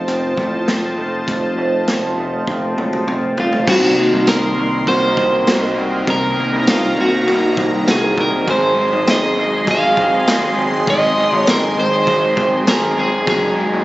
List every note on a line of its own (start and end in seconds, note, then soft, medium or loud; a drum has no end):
0.00 1.27 F2 medium
0.00 0.36 A3 medium
0.00 3.64 F4 medium
0.00 3.64 C5 medium
0.00 3.64 D#5 medium
0.00 3.64 A5 medium
0.07 0.34 F1 loud
0.07 0.67 C4 medium
0.07 closed hi-hat medium
0.37 0.64 A1 medium
0.37 0.96 A3 medium
0.37 kick medium
0.67 0.94 F1 medium
0.67 1.87 C4 medium
0.67 snare loud
0.67 closed hi-hat medium
0.97 1.24 F1 medium
0.97 1.56 A3 medium
1.28 1.54 F1 loud
1.28 3.68 F2 medium
1.28 kick loud
1.28 closed hi-hat medium
1.57 1.84 F1 medium
1.57 2.16 A3 soft
1.87 2.14 F1 loud
1.87 2.47 C4 medium
1.87 snare loud
1.87 closed hi-hat medium
2.18 2.44 F1 medium
2.18 2.76 A3 medium
2.47 2.74 F1 loud
2.47 3.07 C4 medium
2.47 kick medium
2.47 high tom soft
2.78 3.04 F#1 medium
2.78 3.37 A3 soft
2.78 mid tom medium
2.93 mid tom medium
3.07 3.34 F1 medium
3.07 4.01 C4 soft
3.07 mid tom medium
3.37 3.64 F1 medium
3.37 3.74 A3 medium
3.37 3.69 F4 medium
3.37 floor tom medium
3.52 floor tom medium
3.65 3.94 C2 loud
3.65 4.86 C3 medium
3.65 6.06 C3 medium
3.65 4.85 D#3 medium
3.65 4.87 F#4 medium
3.65 8.44 A#4 medium
3.65 8.44 D#5 medium
3.65 6.05 C6 loud
3.65 kick loud
3.65 crash loud
3.70 4.87 A#3 medium
3.70 4.89 D#4 medium
3.70 4.30 F#4 medium
3.70 4.91 F#4 medium
3.98 4.56 A#3 medium
4.13 4.26 C2 loud
4.27 4.54 C2 loud
4.27 5.17 C4 medium
4.27 4.84 A#4 loud
4.27 snare loud
4.27 ride medium
4.27 tambourine medium
4.57 4.84 C2 loud
4.57 6.36 A#3 medium
4.86 5.14 C2 loud
4.86 5.46 D#3 medium
4.86 5.47 A#3 medium
4.86 5.50 D#4 medium
4.86 5.47 F#4 medium
4.86 5.74 C5 loud
4.86 kick medium
4.86 ride medium
4.91 5.51 F#4 medium
5.17 5.44 C2 loud
5.17 5.77 C4 medium
5.17 kick medium
5.46 5.74 C2 loud
5.46 6.07 D#3 medium
5.46 6.07 A#3 medium
5.46 6.09 D#4 medium
5.46 6.10 F#4 medium
5.46 snare loud
5.46 ride medium
5.46 tambourine medium
5.51 6.95 F#4 medium
5.77 6.04 C2 loud
5.77 6.67 C4 medium
6.06 6.34 C2 loud
6.06 6.97 C3 medium
6.06 8.48 C3 medium
6.06 7.26 D#3 medium
6.06 6.98 A#3 medium
6.06 6.98 D#4 medium
6.06 6.71 A#4 medium
6.06 8.45 A#5 loud
6.06 kick loud
6.06 ride medium
6.37 6.96 A#3 medium
6.52 6.66 C2 medium
6.67 6.94 C2 loud
6.67 7.57 C4 medium
6.67 7.00 F4 medium
6.67 snare loud
6.67 ride medium
6.67 tambourine medium
6.96 7.24 C2 medium
6.96 8.54 A#3 medium
6.96 7.28 D#4 medium
6.96 7.27 F#4 medium
7.01 7.27 A#3 soft
7.01 7.90 F#4 medium
7.26 7.54 C2 loud
7.26 7.86 D#3 medium
7.26 7.87 A#3 medium
7.26 7.90 D#4 medium
7.26 7.87 F#4 medium
7.26 ride medium
7.31 7.91 F#4 medium
7.57 7.84 C2 loud
7.57 8.17 C4 medium
7.57 kick loud
7.86 8.14 C2 loud
7.86 8.47 D#3 medium
7.86 8.48 A#3 medium
7.86 8.49 D#4 medium
7.86 8.48 F#4 medium
7.86 snare loud
7.86 ride medium
7.86 tambourine medium
7.91 8.50 F#4 medium
7.91 8.20 G#4 medium
8.18 8.44 C2 loud
8.18 9.07 C4 medium
8.18 8.47 A#4 loud
8.18 kick medium
8.46 8.74 G#1 loud
8.46 9.37 G#2 medium
8.46 10.86 G#2 medium
8.46 10.87 D#3 medium
8.46 9.39 F#3 medium
8.46 9.40 G#3 medium
8.46 9.37 C4 loud
8.46 13.85 G#4 medium
8.46 9.67 G#4 medium
8.46 9.36 G#4 medium
8.46 13.24 D#5 medium
8.46 13.24 C6 loud
8.46 kick loud
8.46 ride medium
8.51 9.10 C5 loud
8.77 9.37 G#3 medium
8.92 9.06 G#1 loud
9.07 9.34 G#1 loud
9.07 9.96 C4 medium
9.07 9.70 D#5 loud
9.07 snare loud
9.07 ride medium
9.07 tambourine medium
9.36 9.64 G#1 medium
9.36 11.17 G#3 medium
9.36 9.67 G#3 soft
9.36 9.68 C4 soft
9.36 9.67 G#4 medium
9.41 9.65 F#3 soft
9.66 9.94 G#1 loud
9.66 10.26 F#3 medium
9.66 10.28 G#3 medium
9.66 10.29 C4 medium
9.66 10.27 G#4 medium
9.66 kick loud
9.66 ride medium
9.71 10.31 G#4 medium
9.71 10.55 F5 loud
9.97 10.24 G#1 loud
9.97 10.56 C4 medium
9.97 kick medium
10.26 10.54 G#1 loud
10.26 10.88 F#3 medium
10.26 10.90 G#3 medium
10.26 10.89 C4 medium
10.26 10.88 G#4 medium
10.26 snare loud
10.26 ride medium
10.26 tambourine medium
10.31 10.92 G#4 medium
10.57 10.84 G#1 medium
10.57 11.46 C4 medium
10.85 11.14 G#1 loud
10.85 12.06 G#2 medium
10.85 13.28 G#2 medium
10.85 13.85 D#3 medium
10.85 12.05 F#3 medium
10.85 12.07 G#4 medium
10.85 kick loud
10.85 ride medium
10.90 12.07 G#3 medium
10.90 12.08 C4 loud
10.90 12.11 G#4 medium
10.90 11.37 D#5 loud
11.17 11.77 G#3 medium
11.32 11.46 G#1 loud
11.37 11.50 C#5 loud
11.47 11.74 G#1 loud
11.47 12.36 C4 medium
11.47 11.79 A#4 loud
11.47 snare loud
11.47 ride medium
11.47 tambourine medium
11.77 12.04 G#1 loud
11.77 13.57 G#3 medium
11.77 12.69 C5 loud
12.06 12.34 G#1 loud
12.06 12.65 F#3 medium
12.06 12.67 G#3 medium
12.06 12.69 C4 medium
12.06 12.67 G#4 medium
12.06 kick medium
12.06 ride medium
12.11 12.71 G#4 medium
12.37 12.64 G#1 loud
12.37 12.96 C4 medium
12.37 kick medium
12.66 12.94 G#1 medium
12.66 13.26 F#3 medium
12.66 13.28 G#3 medium
12.66 13.29 C4 medium
12.66 13.28 G#4 medium
12.66 12.99 A#4 medium
12.66 snare loud
12.66 ride medium
12.66 tambourine medium
12.71 13.29 G#4 medium
12.97 13.24 G#1 loud
12.97 13.34 C4 medium
12.97 13.29 G#4 medium
13.26 13.54 F#1 loud
13.26 13.85 F#3 medium
13.26 13.85 G#3 medium
13.26 13.85 D#4 medium
13.26 13.85 G#4 medium
13.26 13.85 A#4 medium
13.26 13.85 D#5 medium
13.26 13.85 A#5 loud
13.26 kick loud
13.26 ride medium
13.58 13.85 G#3 medium
13.73 13.85 F#1 loud